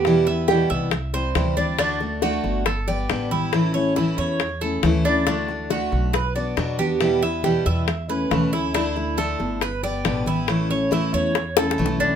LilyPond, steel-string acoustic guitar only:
\new Staff \with { instrumentName = "Steel-string acoustic guitar" } { \time 4/4 \key d \major \tempo 4 = 138 <b, e g b e'>8 <g b e'>8 <b, e g b e'>4 r8 <g c' e'>8 <c e g c' e'>8 <g c' e'>8 | <d a d' fis'>8 <a d' fis'>8 <d a d' fis'>4 r8 <g b g'>8 <d g b g'>8 <g b g'>8 | <e a cis' e'>8 <a cis' e'>8 <e a cis' e'>4 r8 <a cis' e'>8 <e a cis' e'>8 <a cis' e'>8 | <d a d' fis'>8 <a d' fis'>8 <d a d' fis'>4 r8 <b d' fis'>8 <b, fis b d' fis'>8 <b d' fis'>8 |
<b, e g b e'>8 <g b e'>8 <b, e g b e'>4 r8 <a cis' e'>8 <b, e a cis' e'>8 <a cis' e'>8 | <d a d' e'>8 <a d' e'>8 <d a d' e'>4 r8 <g b g'>8 <b, d g b g'>8 <g b g'>8 | <e a cis' e'>8 <a cis' e'>8 <e a cis' e'>4 r8 <a cis' e'>8 <e a cis' e'>8 <a cis' e'>8 | }